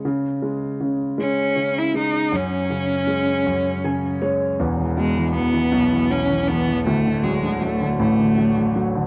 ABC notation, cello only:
X:1
M:6/8
L:1/16
Q:3/8=53
K:E
V:1 name="Cello"
z6 C3 E D2 | C8- C2 z2 | z2 G,2 B,4 C2 B,2 | A,2 G,2 A,2 A,4 z2 |]